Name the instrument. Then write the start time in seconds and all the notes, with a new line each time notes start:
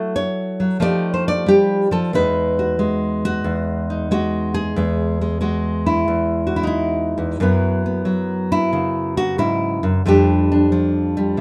nylon-string guitar
Already playing: F#3 A3 E4 A4
0.16 C#5
0.60 F#3
0.80 F3 A3 D#4 G4 D5
1.14 C5
1.28 D5
1.46 G3 G4
1.91 F3 A4
2.13 E2 G#3 D#4 F#4 B4
2.59 F#4
2.79 G#3
3.25 F#4
3.44 E2
3.90 D#4
4.11 G#3 F#4
4.54 G#4
4.76 E2 G#3
5.21 G#3
5.41 G#3 F#4
5.86 E4
6.08 E2
6.47 F#4
6.56 E4
6.63 D#4 E4
7.18 E2
7.40 F#2 F#3 B3 E4
7.86 B3
8.05 F#3
8.52 E4
8.73 C#3
9.17 F#4
9.38 G#2 E4
9.83 F#2
10.06 F2 F3 G3 D4 G4
10.52 D4
10.72 F3
11.17 G3
11.37 C3